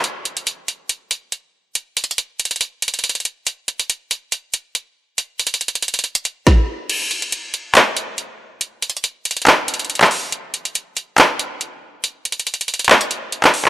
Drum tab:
CC |------------------------------------------------------------------------------------------------|------------------------------------------------------------------------------------------------|------------------------------------------------------------------------------------------------|------------------------------------------------------------------------------------------------|
HH |x-----------x-----x-----x-----------x-----------x-----------x-----------x-----------------------|x-----------x---x---x---x-----------x--x--x--x--x-----------x--x--x--x--x--x--x--x--x-----------|x-----------x-----x-----x-----------x-----------x-----------x-----------x-----------------------|x-----------x---x---x---x---x---x---x--x--x--x--x-----x-----x-----------------------------------|
CP |------------------------------------------------------------------------------------------------|------------------------------------------------------------------------------------------------|------------------------------------------------------------------------------------------------|------------------------------------------------------------------------------------------------|
SD |------------------------------------------------------------------------------------------------|------------------------------------------------------------------------------------------------|------------------------------------------------------------------------------------------------|------------------------------------------------------------------------o-----------------------|
BD |------------------------------------------------------------------------------------------------|------------------------------------------------------------------------------------------------|------------------------------------------------------------------------------------------------|------------------------------------------------------------------------o-----------------------|

CC |x-----------------------------------------------------------------------------------------------|------------------------------------------------------------------------------------------------|------------------------------------------------------------------------------------------------|------------------------------------------------------------------------------------------------|
HH |x-----------x-----x-----x-----------x-----------x-----------x-----------x-----------------------|x-----------x---x---x---x-----------x--x--x--x--x-----------x--x--x--x--x--x--x--x--o-----------|x-----------x-----x-----x-----------x-----------x-----------x-----------x-----------------------|x-----------x---x---x---x---x---x---x--x--x--x--x-----x-----x-----------x-----x-----o-----------|
CP |------------------------------------------------x-----------------------------------------------|------------------------------------------------x-----------------------------x-----------------|------------------------------------------------x-----------------------------------------------|------------------------------------------------x-----------------------------x-----------x-----|
SD |------------------------------------------------------------------------------------------------|------------------------------------------------------------------------------------------------|------------------------------------------------------------------------------------------------|------------------------------------------------------------------------------------------------|
BD |------------------------------------------------------------------------------------------------|------------------------------------------------------------------------------------------------|------------------------------------------------------------------------------------------------|------------------------------------------------------------------------------------------------|